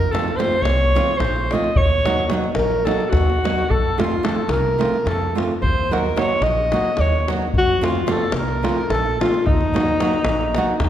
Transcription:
Already playing: upright bass F2, accordion A#4, alto saxophone A#4
0.12 nylon-string guitar F3 A3 C4 F4, alto saxophone A4, accordion A4, davul high
0.28 davul high
0.36 nylon-string guitar F3 A3 C4, alto saxophone C5, accordion C5, davul high
0.40 nylon-string guitar F4
0.62 upright bass C2, accordion C#5, alto saxophone C#5, davul high
0.81 davul high
0.95 nylon-string guitar F3 A3 C4 F4, davul high
1.08 davul high
1.17 upright bass A#1, alto saxophone C5, accordion C5, davul high
1.36 davul high
1.51 nylon-string guitar F3 A3 C4 F4, alto saxophone D#5, accordion D#5, davul high
1.64 davul high
1.76 upright bass D#2, alto saxophone C#5, accordion C#5, davul low
2.06 nylon-string guitar F#3 A#3 D#4 F#4, davul high
2.19 davul high
2.30 nylon-string guitar F#3 A#3 D#4 F#4, davul high
2.44 davul high
2.54 upright bass A#1, alto saxophone A#4, accordion A#4, davul high
2.71 davul high
2.85 nylon-string guitar F#3 A#3 D#4 F#4, alto saxophone A4, davul high
2.89 accordion A4
3.01 alto saxophone A4, davul high
3.09 upright bass D#2, alto saxophone F#4, accordion F#4 A4, davul high, davul low
3.30 davul high
3.44 nylon-string guitar F#3 A#3 D#4 F#4, davul high
3.59 davul high
3.70 upright bass F2, accordion A4, alto saxophone A4, davul low
3.98 nylon-string guitar F3 A3 C4 F4, alto saxophone F4, accordion F4, davul high
4.12 davul high
4.23 nylon-string guitar F3 A3 C4 F4, alto saxophone A4, accordion A4, davul high
4.48 upright bass C2, accordion A#4, alto saxophone A#4, davul high
4.65 davul high
4.78 nylon-string guitar F3 A3 C4 F4, davul high
4.94 davul high
5.06 upright bass F2, alto saxophone A4, accordion A4, davul high
5.22 davul high
5.35 nylon-string guitar F3 A3 C4 F4, davul high
5.52 davul high
5.62 upright bass D#2, alto saxophone C5, accordion C5, davul low
5.91 nylon-string guitar F#3 A#3 D#4 F#4, alto saxophone A#4, accordion A#4, davul high
6.06 davul high
6.16 nylon-string guitar F#3 A#3 D#4 F#4, alto saxophone C#5, accordion C#5, davul high
6.41 upright bass A#1, alto saxophone D#5, accordion D#5, davul high
6.58 davul high
6.72 nylon-string guitar F#3 A#3 D#4 F#4, davul high
6.85 davul high
6.97 upright bass D#2, alto saxophone C#5, davul high
7.01 accordion C#5
7.12 davul high
7.28 nylon-string guitar F#3 A#3 D#4 F#4, davul high
7.42 davul high
7.54 upright bass F2, davul low
7.58 alto saxophone F#4, accordion F#4
7.81 nylon-string guitar F3 A3 C4 F4, davul high
7.86 alto saxophone F4, accordion F4
7.95 davul high
8.07 nylon-string guitar F3 A3 C4 F4, accordion A4, davul high
8.11 alto saxophone A4
8.32 upright bass C2, alto saxophone A#4, davul high
8.37 accordion A#4
8.48 davul high
8.63 nylon-string guitar F3 A3 C4 F4, davul high
8.78 davul high
8.90 upright bass A#1, alto saxophone A4, accordion A4, davul high
9.06 davul high
9.20 nylon-string guitar F3 A3 C4 F4, alto saxophone F4, accordion F4, davul high
9.34 davul high
9.46 upright bass D#2, alto saxophone D#4, accordion D#4, davul low
9.61 davul high
9.74 nylon-string guitar F#3 A#3 D#4 F#4, davul high
9.88 davul high
10.00 nylon-string guitar F#3 A#3 D#4 F#4, davul high
10.13 davul high
10.24 upright bass A#1, davul high
10.41 davul high
10.55 nylon-string guitar F#3 A#3 D#4 F#4, davul high
10.80 upright bass D#2, davul high, davul low

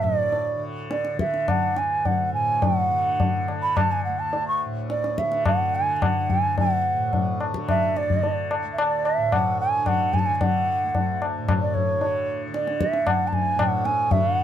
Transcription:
Already playing: tanpura D2 A2 D3
0.03 bansuri D5, tabla ge
0.32 tabla tin
0.55 tanpura D3
0.91 bansuri D5, tabla te
1.05 tabla te
1.15 tanpura D3
1.19 bansuri E5, tabla ke
1.34 tabla te
1.48 bansuri F#5, tabla na, tabla ge
1.74 tanpura D2, bansuri G#5, tabla te
2.05 bansuri F#5, tabla tin, tabla ge
2.31 tanpura A2, bansuri G#5
2.62 bansuri F#5, tabla tin, tabla ge
2.90 tanpura D3
3.20 tabla tin, tabla ge
3.48 tanpura D3, tabla na
3.62 bansuri B5
3.77 bansuri A5, tabla na, tabla ge
3.92 bansuri G#5
4.05 tanpura D2, bansuri F#5
4.20 bansuri A5
4.33 tabla tin
4.48 bansuri C#6
4.65 tanpura A2
4.90 bansuri D5, tabla te
5.04 tabla te
5.18 bansuri E5, tabla ke
5.23 tanpura D3
5.32 tabla te
5.46 bansuri F#5, tabla na, tabla ge
5.75 bansuri G#5
5.80 tanpura D3
5.96 bansuri G#5
6.02 bansuri F#5, tabla na, tabla ge
6.30 bansuri G#5, tabla ge
6.37 tanpura D2
6.58 bansuri F#5, tabla tin, tabla ge
6.94 tanpura A2
7.13 tabla tin, tabla ge
7.41 tabla na
7.50 tanpura D3
7.54 tabla ke
7.69 bansuri E5, tabla na, tabla ge
7.96 bansuri D5, tabla te
8.07 tanpura D3, tabla ge
8.23 tabla tin
8.51 tabla na
8.63 tanpura D2
8.73 bansuri E5
8.78 bansuri D5, tabla na
9.05 bansuri E5, tabla na
9.18 tanpura A2
9.32 bansuri F#5, tabla na, tabla ge
9.61 bansuri G#5
9.74 tanpura D3
9.86 bansuri F#5, tabla na, tabla ge
10.14 bansuri G#5, tabla ge
10.19 bansuri A5
10.26 tanpura D3, bansuri G#5
10.35 bansuri G#5
10.41 bansuri F#5, tabla tin, tabla ge
10.84 tanpura D2
10.95 tabla tin, tabla ge
11.22 tabla na
11.38 tanpura A2
11.49 tabla na, tabla ge
11.62 bansuri D5
11.74 bansuri C#5, tabla ge
11.93 tanpura D3
12.01 tabla tin
12.48 tanpura D3
12.54 bansuri D5, tabla te
12.67 tabla te
12.81 bansuri E5, tabla ke
12.93 tabla te
13.02 tanpura D2
13.07 bansuri F#5, tabla na, tabla ge
13.28 bansuri A5
13.33 bansuri G#5, tabla ge
13.55 tanpura A2
13.59 bansuri F#5, tabla na, tabla ge
13.85 bansuri G#5, tabla te
14.08 tanpura D3, bansuri E5, tabla tin, tabla ge
14.35 bansuri F#5

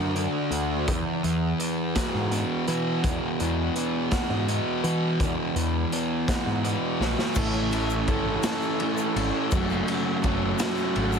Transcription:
Already playing: picked electric bass F#2, distorted electric guitar D3 D4 F#4
0.16 distorted electric guitar D4, closed hi-hat
0.51 picked electric bass D2, distorted electric guitar F#4, closed hi-hat
0.88 distorted electric guitar E2, picked electric bass E2, kick, closed hi-hat
1.23 picked electric bass E2, distorted electric guitar E3, closed hi-hat
1.59 distorted electric guitar B3, closed hi-hat
1.95 distorted electric guitar F#4, kick, snare, closed hi-hat
2.14 picked electric bass G#2
2.31 distorted electric guitar B3, closed hi-hat
2.67 picked electric bass E3, distorted electric guitar F#4, closed hi-hat
3.03 distorted electric guitar E2, picked electric bass E2, kick, closed hi-hat
3.40 picked electric bass E2, distorted electric guitar E3, closed hi-hat
3.75 distorted electric guitar B3, closed hi-hat
4.11 distorted electric guitar F#4, kick, snare, closed hi-hat
4.30 picked electric bass G#2
4.48 distorted electric guitar B3, closed hi-hat
4.84 picked electric bass E3, distorted electric guitar F#4, closed hi-hat
5.20 picked electric bass E2, distorted electric guitar E2, kick, closed hi-hat
5.55 picked electric bass E2, distorted electric guitar E3, closed hi-hat
5.92 distorted electric guitar B3, closed hi-hat
6.28 distorted electric guitar F#4, kick, snare, closed hi-hat
6.46 picked electric bass G#2
6.64 distorted electric guitar B3, closed hi-hat
7.00 picked electric bass A#1, distorted electric guitar F#4, snare
7.19 snare
7.35 picked electric bass A1, distorted electric guitar A2 E3 A3 C#4, transistor combo organ A4 E5 G#5 C#6, kick, crash, shaker
7.39 distorted electric guitar A4
7.53 shaker
7.71 distorted electric guitar A3 C#4 A4, ride, shaker
7.90 shaker
8.07 picked electric bass G#1, distorted electric guitar E3 A3 C#4 A4, kick, ride, shaker
8.43 distorted electric guitar A3 C#4 A4, snare, ride, shaker
8.62 shaker
8.80 distorted electric guitar E3 A3 C#4 A4, ride
8.97 shaker
9.16 picked electric bass G#1, distorted electric guitar C#4 A4, ride
9.20 distorted electric guitar A3
9.51 picked electric bass F#1, distorted electric guitar F#2 C#3 F#3 A3, transistor combo organ F#5, kick, ride, shaker
9.55 distorted electric guitar C#4 F#4
9.70 shaker
9.87 distorted electric guitar A3 C#4 F#4, ride, shaker
9.92 distorted electric guitar F#3
10.23 picked electric bass F#1, distorted electric guitar F#3 A3 C#4, kick, ride, shaker
10.27 distorted electric guitar F#4
10.59 distorted electric guitar F#3 A3 C#4 F#4, snare, ride, shaker
10.77 shaker
10.96 picked electric bass G#1, distorted electric guitar F#3 A3 C#4 F#4, ride
11.12 shaker

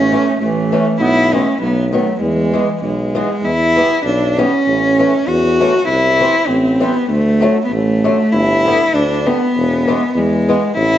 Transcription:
Already playing: tuba A1, clarinet A3, cello C#4
0.12 steel-string acoustic guitar E3 A3 C#4
0.39 tuba A1, clarinet E3, cello A3
0.72 steel-string acoustic guitar E3 A3 C#4
0.99 tuba B1, clarinet B3, cello E4
1.33 steel-string acoustic guitar E3 G#3 B3, clarinet A3, cello C#4
1.60 tuba B1, clarinet F#3, cello B3
1.93 steel-string acoustic guitar D#3 F#3 B3, clarinet F#3, cello A3
2.20 tuba E2, clarinet E3, cello G#3
2.53 steel-string acoustic guitar E3 G#3 B3
2.82 tuba B1, cello G#3
3.15 steel-string acoustic guitar E3 G#3 B3
3.43 tuba E2, cello E4
3.76 steel-string acoustic guitar E3 G3 B3
4.04 tuba B1, cello D4
4.38 steel-string acoustic guitar E3 G3 B3, cello C#4
4.67 tuba A1
4.99 steel-string acoustic guitar E3 A3 C#4
5.27 tuba E2, cello F#4
5.60 steel-string acoustic guitar E3 A3 C#4
5.87 tuba C2, cello E4
6.20 steel-string acoustic guitar E3 G3 C4
6.47 tuba A1, cello C4
6.80 steel-string acoustic guitar E3 G3 C4, cello B3
7.09 tuba D2, cello A3
7.41 steel-string acoustic guitar D3 F#3 A3
7.65 cello B3
7.70 tuba A1, cello A3
8.04 steel-string acoustic guitar D3 F#3 A3
8.33 tuba G1, cello E4
8.66 steel-string acoustic guitar D3 G3 B3
8.93 tuba D2, cello D4
9.26 steel-string acoustic guitar D3 G3 B3, cello B3
9.55 tuba E1
9.88 steel-string acoustic guitar E3 G#3 B3
10.15 tuba E2, cello G#3
10.49 steel-string acoustic guitar E3 G#3 B3
10.76 tuba A1, cello E4

